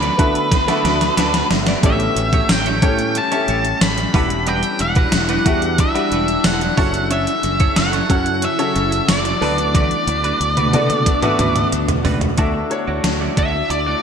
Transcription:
Already playing: D3 A3 B3 D4 F#4 A4 B4 D5
0.02 D4 F#4 B4 D5, closed hi-hat
0.18 D3 B3 D4 F#4 A4 B4 D5 E5, kick, closed hi-hat
0.35 muted clean electric guitar stroke, closed hi-hat
0.51 D3 A3 D4, muted clean electric guitar stroke, kick, snare, closed hi-hat
0.67 B3 D4 F#4 A4 B4 D5 E5, snare, closed hi-hat
0.84 D2 D4 F#4 B4 D5, snare, closed hi-hat
1.01 muted clean electric guitar stroke, snare, closed hi-hat
1.17 D2 D3 A3 D4 F#4 B4 D5 A5, snare, closed hi-hat
1.34 muted clean electric guitar stroke, snare, closed hi-hat
1.50 G1 E5, muted clean electric guitar stroke, snare, open hi-hat
1.66 D4 F#4 B4 D5, snare, closed hi-hat
1.82 A1 A2 E3 G3 A3 C#4 E4 G4 A4 C#5 E5, kick, closed hi-hat
2.00 muted clean electric guitar stroke, closed hi-hat
2.16 A1 E3 A3, muted clean electric guitar stroke, closed hi-hat
2.33 A3 E4 G4 C#5, kick, closed hi-hat
2.49 A1 G5, muted clean electric guitar stroke, snare, closed hi-hat, tambourine
2.66 A3 E4 G4 C#5, closed hi-hat
2.81 A2 A3 C#4 E4 G4 A4 C#5, kick, closed hi-hat
2.99 muted clean electric guitar stroke, closed hi-hat
3.15 A2 E3 A3 A5, muted clean electric guitar stroke, closed hi-hat
3.31 A3 C#4 E4 G4 A4 C#5 E5, closed hi-hat
3.48 A1 A3 E4 G4 C#5, closed hi-hat
3.65 muted clean electric guitar stroke, closed hi-hat
3.81 A1 A2 E3 A3 B5, muted clean electric guitar stroke, snare, closed hi-hat, tambourine
3.98 muted clean electric guitar stroke, closed hi-hat
4.13 E1 E3 G3 B3 D4 E4 F#4 G4 B4 E5, kick, open hi-hat
4.30 muted clean electric guitar stroke, closed hi-hat
4.47 G3 D4 F#4 B4 G5, closed hi-hat
4.63 muted clean electric guitar stroke, closed hi-hat
4.79 E1 B3 E4 F#5, muted clean electric guitar stroke, closed hi-hat
4.95 G3 D4 F#4 B4, kick, closed hi-hat
5.12 E1, muted clean electric guitar stroke, snare, closed hi-hat, tambourine
5.29 G3 D4 F#4 B4, closed hi-hat
5.45 E2 G3 D4 F#4 G4 B4 E5, kick, closed hi-hat
5.62 muted clean electric guitar stroke, closed hi-hat
5.78 E3 B3 E4 E5, muted clean electric guitar stroke, kick, closed hi-hat
5.95 G3 D4 F#4 G4 B4 E5 F#5, closed hi-hat
6.12 E1 G3 D4 F#4 B4, closed hi-hat
6.28 muted clean electric guitar stroke, closed hi-hat
6.44 E1 E3 B3 E4 F#5, muted clean electric guitar stroke, snare, closed hi-hat, tambourine
6.61 muted clean electric guitar stroke, closed hi-hat
6.77 F#1 C#3 F#3 C#4 E4 F#4 A4 C#5 E5, kick, open hi-hat
6.94 muted clean electric guitar stroke, closed hi-hat
7.11 C#4 E4 A4 C#5 E5, closed hi-hat
7.27 muted clean electric guitar stroke, closed hi-hat
7.43 F#1 C#4 F#4, muted clean electric guitar stroke, closed hi-hat
7.60 C#4 E4 A4 C#5, kick, closed hi-hat
7.76 F#1 F#5, muted clean electric guitar stroke, snare, closed hi-hat, tambourine
7.93 C#4 E4 A4 C#5, closed hi-hat
8.10 F#2 C#4 E4 F#4 A4 C#5 F#5, kick, closed hi-hat
8.26 muted clean electric guitar stroke, closed hi-hat
8.42 F#3 C#4 F#4 E5, muted clean electric guitar stroke, closed hi-hat
8.59 C#3 C#4 E4 F#4 A4 C#5 E5, closed hi-hat
8.75 F#1 C#4 E4 A4 C#5, closed hi-hat
8.92 muted clean electric guitar stroke, closed hi-hat
9.08 F#1 F#3 F#4 D5, muted clean electric guitar stroke, snare, closed hi-hat, tambourine
9.25 muted clean electric guitar stroke, closed hi-hat
9.41 D2 D3 A3 B3 D4 F#4 A4 B4 D5, open hi-hat
9.58 muted clean electric guitar stroke, closed hi-hat
9.75 A3 D4 F#4 B4 D5, kick, closed hi-hat, high tom
9.91 muted clean electric guitar stroke, closed hi-hat
10.07 D2 A3 D4, muted clean electric guitar stroke, closed hi-hat
10.24 A3 D4 F#4 B4, closed hi-hat
10.40 D2, muted clean electric guitar stroke, closed hi-hat
10.57 A3 D4 F#4 B4, closed hi-hat, mid tom
10.73 D3 A3 B3 D4 F#4 A4 B4 D5, closed hi-hat, mid tom
10.90 muted clean electric guitar stroke, closed hi-hat, mid tom
11.06 D3 A3 D4, muted clean electric guitar stroke, kick, closed hi-hat
11.22 A3 B3 D4 F#4 A4 B4 E5, closed hi-hat, mid tom
11.39 D2 A3 D4 F#4 B4, closed hi-hat, mid tom
11.56 muted clean electric guitar stroke, closed hi-hat, mid tom
11.72 D2 A3 D4, muted clean electric guitar stroke, closed hi-hat
11.88 muted clean electric guitar stroke, closed hi-hat, floor tom
12.05 C#2 A3 D4 F#4 B4, floor tom, open hi-hat
12.21 muted clean electric guitar stroke, closed hi-hat, floor tom
12.37 D2 D3 A3 D4 E4 F#4 A4 D5 E5, kick, closed hi-hat
12.55 muted clean electric guitar stroke
12.70 D4 F#4 A4 C#5, muted clean electric guitar stroke, closed hi-hat
12.87 D2 A3 E4 F#4 D5
13.04 D2, muted clean electric guitar stroke, snare, closed hi-hat
13.21 A3 E4 F#4 D5
13.37 D2 A3 E4 F#4 D5 E5, kick, closed hi-hat
13.54 muted clean electric guitar stroke
13.69 D2 D5, muted clean electric guitar stroke, closed hi-hat
13.87 A3 E4 F#4 D5

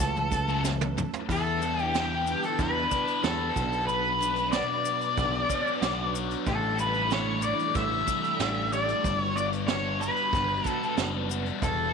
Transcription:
Already playing: F#3 A3 C#4 A4 B4
0.00 C#2
0.16 muted distorted electric guitar stroke, maracas
0.32 kick, closed hi-hat, maracas
0.48 F#2 C#3 F#3, maracas
0.64 snare, maracas
0.81 muted distorted electric guitar stroke, high tom, maracas
0.97 muted distorted electric guitar stroke, mid tom, maracas
1.13 floor tom, maracas
1.29 E2 E3 G3 B3 D4 E4 A4 B4, kick, crash, maracas
1.62 D4, closed hi-hat, maracas
1.79 G4, maracas
1.94 G4, snare, closed hi-hat, maracas
2.26 B3, closed hi-hat, maracas
2.43 A4, closed hi-hat, maracas
2.58 E2 D4 B4, kick, closed hi-hat, maracas
2.91 D5, kick, closed hi-hat, maracas
3.07 closed hi-hat, maracas
3.23 E2 G4 A4, snare, closed hi-hat, maracas
3.55 B1 B2 F#3, kick, closed hi-hat, maracas
3.73 closed hi-hat, maracas
3.87 B2 B4, closed hi-hat, maracas
4.20 D4, closed hi-hat, maracas
4.36 closed hi-hat, maracas
4.52 F#4 D5, snare, closed hi-hat, maracas
4.85 B3, closed hi-hat, maracas
5.01 closed hi-hat, maracas
5.17 B1 D4, kick, closed hi-hat, maracas
5.49 C#5, kick, closed hi-hat, maracas
5.67 maracas
5.82 B1 F#4, snare, closed hi-hat, maracas
6.14 C#5, closed hi-hat, maracas
6.31 closed hi-hat, maracas
6.46 A1 A2 G3 A3 E4 A4, kick, closed hi-hat, maracas
6.79 G3 B4, closed hi-hat, maracas
6.95 maracas
7.10 D4 C#5, snare, closed hi-hat, maracas
7.42 E3 D5, closed hi-hat, maracas
7.59 closed hi-hat, maracas
7.74 A1 G3 E5, kick, closed hi-hat, maracas
8.07 G4, kick, closed hi-hat, maracas
8.24 closed hi-hat, maracas
8.39 A1 D4, snare, closed hi-hat, maracas
8.72 G4 D5, closed hi-hat, maracas
8.88 closed hi-hat, maracas
9.04 G1 G3 B3 F#4 B4, kick, closed hi-hat, maracas
9.20 C#5
9.36 B3 D5, closed hi-hat, maracas
9.52 closed hi-hat, maracas
9.67 D4 C#5, snare, closed hi-hat, maracas
10.00 G3 B4, closed hi-hat, maracas
10.16 closed hi-hat
10.32 G1 B3, kick, closed hi-hat, maracas
10.64 F#4 A4, kick, closed hi-hat, maracas
10.83 maracas
10.97 F#1 D4, snare, closed hi-hat, maracas
11.29 F#4, closed hi-hat, maracas
11.46 closed hi-hat
11.61 E1 E3 G3 E4 A4, kick, closed hi-hat, maracas

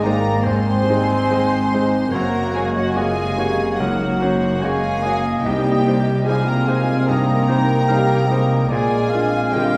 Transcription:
Already playing: G#1 G#2 G#3 D#4 C5
0.02 G#3 A#3 D#4 A#4 C5 D5 G5 A#5
0.43 D#2 G#3 C4 D#4 C5 G#5 C6
0.86 G3 G#3 D#4 C5
1.28 G#3
1.32 D#4 C5
1.74 G#3 D#4 C5
2.11 F#1 F#2 A#3 F#4 A#4 C#5 F#5 A#5
2.53 G#3 A#3 G#4 G#5
2.57 F#4 C#5 F5
2.75 F#3 F#4 D#5 F#5
2.94 C3 G#3 A#3 F4 F#4 G#4 C#5 D#5 F5 G#5
3.36 A#3 D#4 F#4 C#5
3.77 C#2 F#3 A#3 F#4 A#4 C#5 F#5
4.21 A#3 C#4 F#4 C5
4.61 G#3 A#3 C#4 F#4 G#4 C#5 F5 G#5
5.02 A#3 C#4 F#4 C#5 D#5
5.42 C2 C3 G3 D#4 G4 D#5 G5
5.84 G3 D#4 G4
5.88 C5
6.25 G3 G#3 C4 F4 G#4 F5 G#5
6.29 D#4 C5
6.45 A#3 A#4 G5 A#5
6.66 G#3 A#3 D#4 G#4 C5 F5 G#5
7.06 G2 A#3 D#4 A#4 D#5 G5 A#5
7.47 G3 D#4 C5 G5
7.88 G3 D#4 C5 F5
8.29 G3 G#3 D#4 C5 D#5
8.68 A#1 A#2 G#3 A#3 F4 G#4 D5 F5 G#5
8.72 A#2
9.10 A#3 C4 F5
9.14 D4 F4
9.52 D3 G3 A#3 G4 D#5 G5
9.56 D3 F4

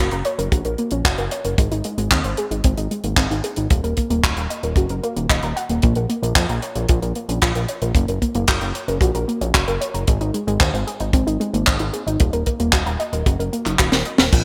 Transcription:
0.11 F#1 A#5, closed hi-hat
0.25 C#5, closed hi-hat
0.39 F#1 A#4, closed hi-hat
0.52 A#1 F#4, kick, closed hi-hat
0.65 A#1 A#4, closed hi-hat
0.78 A#3, closed hi-hat
0.91 A#1 C#4, closed hi-hat
1.05 F#1 F#4, kick, clap, closed hi-hat
1.18 F#1 A#4, closed hi-hat
1.31 C#5, closed hi-hat
1.45 F#1 A#4, closed hi-hat
1.58 G#1 G#3, kick, closed hi-hat
1.71 G#1 D#4, closed hi-hat
1.84 G#3, closed hi-hat
1.98 G#1 G#3, closed hi-hat
2.11 D#2 C4, kick, clap, closed hi-hat
2.24 G#1 C5, closed hi-hat
2.37 G#4, closed hi-hat
2.51 G#1 D#4, closed hi-hat
2.64 G#1 C4, kick, closed hi-hat
2.77 G#1 D#4, closed hi-hat
2.91 G#3, closed hi-hat
3.04 G#1 A#3, closed hi-hat
3.17 G#1 C4, kick, clap, closed hi-hat
3.31 G#1 D#4, closed hi-hat
3.44 G#4, closed hi-hat
3.56 G#1 D#4, closed hi-hat
3.70 D#1 A#3, kick, closed hi-hat
3.84 D#1 A#4, closed hi-hat
3.97 A#3, kick, closed hi-hat
4.10 D#1 A#3, closed hi-hat
4.24 D#1 F#4, kick, clap, closed hi-hat
4.37 D#1 A#5, closed hi-hat
4.50 D#5, closed hi-hat
4.63 D#1 A#4, closed hi-hat
4.76 F#1 F#4, kick, closed hi-hat
4.89 F#1 A#4, closed hi-hat
5.03 A#3, closed hi-hat
5.16 D#1 A#3, closed hi-hat
5.30 D#1 D#5, kick, clap, closed hi-hat
5.43 D#1 A#5, closed hi-hat
5.56 F#5, closed hi-hat
5.69 D#1 A#3, closed hi-hat
5.82 A#1 A#3, kick, closed hi-hat
5.95 A#1 A#4, closed hi-hat
6.09 A#3, closed hi-hat
6.23 A#1 A#3, closed hi-hat
6.35 F2 F4, kick, clap, closed hi-hat
6.49 A#1 A#5, closed hi-hat
6.62 C#5, closed hi-hat
6.75 A#1 A#4, closed hi-hat
6.89 A#1 F4, kick, closed hi-hat
7.02 A#1 A#4, closed hi-hat
7.15 A#3, closed hi-hat
7.29 A#1 C#4, closed hi-hat
7.42 A#1 F4, kick, clap, closed hi-hat
7.55 A#1 A#4, closed hi-hat
7.68 C#5, closed hi-hat
7.82 A#1 A#4, closed hi-hat
7.95 F#1 A#3, kick, closed hi-hat
8.08 F#1 A#4, closed hi-hat
8.22 A#3, kick, closed hi-hat
8.35 F#1 A#3, closed hi-hat
8.48 F#1 F#4, kick, clap, closed hi-hat
8.61 F#1 A#5, closed hi-hat
8.75 C#5, closed hi-hat
8.88 F#1 A#4, closed hi-hat
9.01 A#1 F#4, kick, closed hi-hat
9.15 A#1 A#4, closed hi-hat
9.28 A#3, closed hi-hat
9.41 A#1 C#4, closed hi-hat
9.54 F#1 F#4, kick, clap, closed hi-hat
9.68 F#1 A#4, closed hi-hat
9.81 C#5, closed hi-hat
9.94 F#1 A#4, closed hi-hat
10.07 G#1 G#3, kick, closed hi-hat
10.21 G#1 D#4, closed hi-hat
10.34 G#3, closed hi-hat
10.47 G#1 G#3, closed hi-hat
10.60 D#2 C4, kick, clap, closed hi-hat
10.74 G#1 C5, closed hi-hat
10.87 G#4, closed hi-hat
11.00 G#1 D#4, closed hi-hat
11.13 G#1 C4, kick, closed hi-hat
11.27 G#1 D#4, closed hi-hat
11.40 G#3, closed hi-hat
11.53 G#1 A#3, closed hi-hat
11.67 G#1 C4, kick, clap, closed hi-hat
11.79 G#1 D#4, closed hi-hat
11.93 G#4, closed hi-hat
12.07 G#1 D#4, closed hi-hat
12.20 D#1 A#3, kick, closed hi-hat
12.33 D#1 A#4, closed hi-hat
12.46 A#3, kick, closed hi-hat
12.60 D#1 A#3, closed hi-hat
12.73 D#1 F#4, kick, clap, closed hi-hat
12.86 D#1 A#5, closed hi-hat
13.00 D#5, closed hi-hat
13.13 D#1 A#4, closed hi-hat
13.26 F#1 F#4, kick, closed hi-hat
13.39 F#1 A#4, closed hi-hat
13.53 A#3, closed hi-hat
13.66 F#1 D#4, clap, closed hi-hat
13.79 D#1 F#4, kick, clap, closed hi-hat
13.92 D#1 A#4, snare, closed hi-hat
14.05 D#5, closed hi-hat
14.18 D#1 A#4, snare, closed hi-hat
14.32 A#1, kick, closed hi-hat, crash

